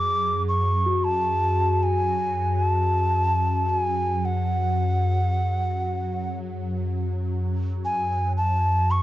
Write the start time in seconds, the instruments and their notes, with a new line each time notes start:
Already playing: ambient pad F#2, singing bowl G#4, ocarina D6
0.48 ocarina C#6
0.86 singing bowl F#4
1.04 ocarina A5
1.83 ocarina G#5
2.56 ocarina A5
3.70 ocarina G#5
4.25 ocarina F#5
7.85 ocarina G#5
8.37 ocarina A5
8.91 ocarina C#6